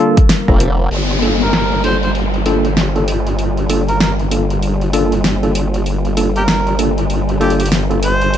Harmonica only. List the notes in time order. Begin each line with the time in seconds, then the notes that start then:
1.41 A#4
1.84 C5
2.03 C5
3.89 A#4
4.01 A#4
6.36 G4 A#4
7.41 G4
7.60 G4
8.03 C5